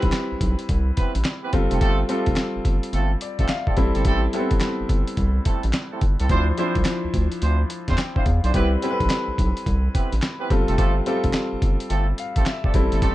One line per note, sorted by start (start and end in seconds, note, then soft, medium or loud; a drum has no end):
0.00 0.11 B1 medium
0.00 1.53 G3 medium
0.00 1.53 C4 medium
0.00 1.55 E4 medium
0.00 1.55 B4 loud
0.00 kick medium
0.00 closed hi-hat soft
0.12 snare loud
0.12 clap medium
0.12 closed hi-hat medium
0.32 0.36 B1 soft
0.41 0.55 B1 medium
0.41 kick medium
0.41 closed hi-hat medium
0.59 closed hi-hat soft
0.69 0.92 C2 loud
0.69 kick loud
0.69 closed hi-hat medium
0.97 1.14 B3 medium
0.97 1.14 C4 medium
0.97 1.14 E4 medium
0.97 1.14 G4 medium
0.97 1.14 B4 medium
0.97 kick medium
0.97 closed hi-hat medium
1.15 1.23 A1 medium
1.15 closed hi-hat medium
1.25 snare loud
1.25 clap medium
1.25 closed hi-hat medium
1.43 1.53 B3 medium
1.43 1.53 C4 medium
1.43 1.53 E4 medium
1.43 1.53 G4 medium
1.43 1.53 B4 medium
1.53 1.68 G1 medium
1.53 2.04 G3 medium
1.53 2.04 C4 medium
1.53 2.04 F4 medium
1.53 2.04 A4 medium
1.53 kick medium
1.53 closed hi-hat medium
1.70 1.79 F1 loud
1.70 1.80 A3 medium
1.70 1.79 C4 medium
1.70 1.80 F4 medium
1.70 1.80 G4 medium
1.70 1.80 A4 medium
1.70 closed hi-hat medium
1.81 2.04 G1 loud
1.81 1.98 A3 loud
1.81 1.98 C4 loud
1.81 1.98 F4 medium
1.81 1.98 G4 medium
1.81 1.98 A4 loud
1.81 kick loud
1.81 closed hi-hat medium
2.09 3.11 G3 medium
2.09 2.27 A3 medium
2.09 2.26 C4 medium
2.09 3.11 C4 medium
2.09 2.26 F4 medium
2.09 3.11 F4 medium
2.09 2.26 G4 medium
2.09 2.27 A4 medium
2.09 3.11 A4 medium
2.09 closed hi-hat medium
2.26 2.35 F1 medium
2.26 kick loud
2.26 closed hi-hat soft
2.36 snare loud
2.36 clap medium
2.36 closed hi-hat medium
2.56 2.60 G1 soft
2.65 2.80 G1 medium
2.65 kick medium
2.65 closed hi-hat medium
2.83 closed hi-hat medium
2.93 3.16 G1 medium
2.93 3.10 A3 medium
2.93 3.10 C4 medium
2.93 3.10 F4 medium
2.93 3.10 G4 medium
2.93 3.10 A4 medium
2.93 closed hi-hat medium
3.21 3.39 D5 medium
3.21 closed hi-hat medium
3.39 3.47 A1 medium
3.39 3.49 A3 medium
3.39 3.49 C4 medium
3.39 3.49 F4 medium
3.39 3.49 G4 medium
3.39 3.49 A4 medium
3.39 3.49 E5 medium
3.39 kick medium
3.39 closed hi-hat medium
3.48 3.67 F5 medium
3.48 snare loud
3.48 clap medium
3.48 closed hi-hat medium
3.67 3.77 A3 medium
3.67 3.77 C4 medium
3.67 3.77 F4 medium
3.67 3.77 G4 medium
3.67 3.77 A4 medium
3.67 3.94 D5 medium
3.67 kick loud
3.77 3.92 A1 medium
3.77 4.28 G3 medium
3.77 4.28 C4 medium
3.77 4.28 E4 medium
3.77 4.29 A4 medium
3.77 kick medium
3.77 closed hi-hat medium
3.95 4.04 G1 medium
3.95 4.04 A3 medium
3.95 4.04 C4 medium
3.95 4.04 E4 medium
3.95 4.04 G4 medium
3.95 4.04 A4 medium
3.95 closed hi-hat medium
4.05 4.28 A1 loud
4.05 4.23 A3 loud
4.05 4.22 C4 medium
4.05 4.23 E4 medium
4.05 4.23 G4 medium
4.05 4.23 A4 loud
4.05 kick loud
4.05 closed hi-hat medium
4.33 5.35 G3 medium
4.33 4.51 A3 medium
4.33 4.42 B3 medium
4.33 4.50 C4 medium
4.33 4.51 E4 medium
4.33 5.36 E4 medium
4.33 4.51 G4 medium
4.33 4.51 A4 medium
4.33 5.36 A4 medium
4.33 closed hi-hat medium
4.40 5.39 C4 medium
4.51 4.59 G1 medium
4.51 kick medium
4.51 closed hi-hat soft
4.61 snare loud
4.61 clap medium
4.61 closed hi-hat medium
4.80 4.84 G1 soft
4.89 5.04 G1 medium
4.89 kick medium
4.89 closed hi-hat medium
5.08 closed hi-hat medium
5.17 5.40 C2 medium
5.17 kick medium
5.17 closed hi-hat medium
5.45 5.63 A3 medium
5.45 5.63 C4 medium
5.45 5.63 E4 medium
5.45 5.63 G4 medium
5.45 5.63 A4 medium
5.45 kick loud
5.45 closed hi-hat medium
5.63 5.72 A1 medium
5.63 closed hi-hat medium
5.73 snare loud
5.73 clap medium
5.73 closed hi-hat medium
5.91 6.01 A3 medium
5.91 6.01 C4 medium
5.91 6.01 E4 medium
5.91 6.01 G4 medium
5.91 6.01 A4 medium
6.01 6.16 G1 medium
6.01 kick medium
6.01 closed hi-hat medium
6.19 6.28 C2 medium
6.19 6.30 A3 medium
6.19 6.29 C4 medium
6.19 6.29 E4 medium
6.19 6.29 G4 medium
6.19 6.30 A4 medium
6.19 closed hi-hat medium
6.29 6.52 D2 loud
6.29 6.55 F3 medium
6.29 6.47 C4 loud
6.29 6.47 D4 loud
6.29 6.56 D4 medium
6.29 6.47 E4 medium
6.29 6.56 E4 medium
6.29 6.47 F4 medium
6.29 6.47 C5 loud
6.29 6.56 C5 medium
6.29 kick loud
6.29 closed hi-hat medium
6.57 7.60 F3 medium
6.57 6.75 C4 medium
6.57 6.75 D4 medium
6.57 7.60 D4 medium
6.57 6.75 E4 medium
6.57 7.60 E4 medium
6.57 6.75 F4 medium
6.57 6.75 C5 medium
6.57 7.60 C5 medium
6.57 closed hi-hat medium
6.75 6.84 C2 medium
6.75 kick medium
6.75 closed hi-hat medium
6.85 snare loud
6.85 clap loud
6.85 closed hi-hat medium
7.04 7.08 D2 medium
7.14 7.28 D2 medium
7.14 kick medium
7.14 closed hi-hat medium
7.32 closed hi-hat soft
7.42 7.65 D2 medium
7.42 7.59 C4 medium
7.42 7.59 D4 medium
7.42 7.59 E4 medium
7.42 7.59 F4 medium
7.42 7.59 C5 medium
7.42 closed hi-hat medium
7.70 closed hi-hat medium
7.88 7.96 E2 medium
7.88 7.98 C4 medium
7.88 7.98 D4 medium
7.88 7.98 E4 medium
7.88 7.98 F4 medium
7.88 7.98 C5 medium
7.88 kick medium
7.88 snare medium
7.88 closed hi-hat medium
7.98 8.15 G5 medium
7.98 snare loud
7.98 clap medium
7.98 closed hi-hat medium
8.16 8.26 C4 medium
8.16 8.25 D4 medium
8.16 8.26 E4 medium
8.16 8.26 F4 medium
8.16 8.26 C5 medium
8.16 8.43 F5 medium
8.16 kick loud
8.26 8.40 E2 medium
8.26 kick loud
8.26 closed hi-hat medium
8.43 8.52 B1 loud
8.43 8.54 C4 medium
8.43 8.53 D4 medium
8.43 8.53 E4 medium
8.43 8.54 F4 medium
8.43 8.54 C5 medium
8.43 8.71 D5 medium
8.43 closed hi-hat medium
8.54 8.77 C2 loud
8.54 8.80 G3 medium
8.54 8.71 B3 medium
8.54 8.71 C4 medium
8.54 8.80 C4 medium
8.54 8.71 E4 medium
8.54 8.80 E4 medium
8.54 8.71 G4 medium
8.54 8.71 B4 loud
8.54 8.81 B4 medium
8.54 kick loud
8.54 closed hi-hat medium
8.82 9.84 G3 medium
8.82 8.99 B3 medium
8.82 8.99 C4 medium
8.82 9.84 C4 medium
8.82 8.99 E4 medium
8.82 9.85 E4 medium
8.82 8.99 G4 medium
8.82 8.91 A4 medium
8.82 8.99 B4 medium
8.82 closed hi-hat medium
8.91 9.88 B4 loud
9.00 9.08 B1 medium
9.00 kick medium
9.00 closed hi-hat soft
9.10 snare loud
9.10 clap medium
9.10 closed hi-hat medium
9.28 9.32 B1 soft
9.38 9.53 B1 medium
9.38 kick loud
9.38 closed hi-hat medium
9.57 closed hi-hat soft
9.66 9.89 C2 medium
9.66 kick medium
9.66 closed hi-hat medium
9.94 10.12 B3 medium
9.94 10.11 C4 medium
9.94 10.11 E4 medium
9.94 10.12 G4 medium
9.94 10.12 B4 medium
9.94 kick medium
9.94 closed hi-hat medium
10.12 10.21 A1 medium
10.12 closed hi-hat medium
10.22 snare loud
10.22 clap medium
10.22 closed hi-hat medium
10.39 10.50 B3 medium
10.39 10.49 C4 medium
10.39 10.50 E4 medium
10.39 10.50 G4 medium
10.39 10.50 B4 medium
10.50 10.65 G1 medium
10.50 11.01 G3 medium
10.50 11.02 C4 medium
10.50 11.02 F4 medium
10.50 11.02 A4 loud
10.50 kick loud
10.50 closed hi-hat medium
10.67 10.77 F1 loud
10.67 10.77 A3 medium
10.67 10.76 C4 medium
10.67 10.76 F4 medium
10.67 10.77 G4 medium
10.67 10.77 A4 medium
10.67 closed hi-hat medium
10.77 11.01 G1 loud
10.77 10.95 A3 medium
10.77 10.95 C4 medium
10.77 10.95 F4 medium
10.77 10.95 G4 medium
10.77 10.95 A4 loud
10.77 kick loud
10.77 closed hi-hat medium
11.06 12.08 G3 medium
11.06 11.23 A3 medium
11.06 11.23 C4 medium
11.06 12.08 C4 medium
11.06 11.23 F4 medium
11.06 12.08 F4 medium
11.06 11.23 G4 medium
11.06 11.23 A4 medium
11.06 12.09 A4 loud
11.06 closed hi-hat medium
11.24 11.32 F1 medium
11.24 kick medium
11.24 closed hi-hat soft
11.33 snare loud
11.33 clap medium
11.33 closed hi-hat medium
11.53 11.57 G1 soft
11.62 11.77 G1 medium
11.62 kick medium
11.62 closed hi-hat medium
11.80 closed hi-hat medium
11.89 12.13 G1 medium
11.89 12.08 A3 medium
11.89 12.07 C4 medium
11.89 12.07 F4 medium
11.89 12.07 G4 medium
11.89 12.08 A4 medium
11.89 closed hi-hat medium
12.18 12.46 F5 medium
12.18 closed hi-hat medium
12.36 12.44 A1 medium
12.36 12.46 A3 medium
12.36 12.46 C4 medium
12.36 12.46 F4 medium
12.36 12.46 G4 medium
12.36 12.46 A4 medium
12.36 kick medium
12.36 closed hi-hat medium
12.46 12.64 E5 medium
12.46 snare loud
12.46 clap medium
12.46 closed hi-hat medium
12.64 12.74 A3 medium
12.64 12.74 C4 medium
12.64 12.74 F4 medium
12.64 12.74 G4 medium
12.64 12.74 A4 medium
12.64 12.92 D5 medium
12.64 kick loud
12.74 12.89 A1 medium
12.74 13.15 G3 medium
12.74 13.15 C4 medium
12.74 13.15 E4 medium
12.74 13.15 A4 loud
12.74 kick loud
12.74 closed hi-hat medium
12.92 13.01 G1 medium
12.92 13.01 A3 medium
12.92 13.01 C4 medium
12.92 13.01 E4 medium
12.92 13.01 G4 medium
12.92 13.01 A4 medium
12.92 closed hi-hat medium
13.02 13.15 A1 loud
13.02 13.15 A3 medium
13.02 13.15 C4 loud
13.02 13.15 E4 medium
13.02 13.15 G4 medium
13.02 13.15 A4 loud
13.02 kick loud
13.02 closed hi-hat medium